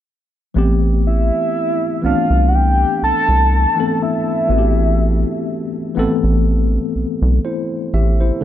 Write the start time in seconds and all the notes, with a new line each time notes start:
0.54 A1 E3 A3 B3 C4 G4
1.07 E5
2.02 C2 E3 A3 B3 C4 D4 F5
2.30 C2
2.48 F#5
2.55 G5
3.02 C2 A5
3.29 C2
3.76 E3 A3 B3 C4 A4
4.03 E5
4.48 A1 E3 A3 B3 C4 F#4
4.58 G4
5.95 A1 E3 A3 B3 C4 A4
6.24 A1
6.95 B1
7.22 B1
7.45 E4 C5
7.94 A1 G4 E5
8.21 E4 C5
8.41 D3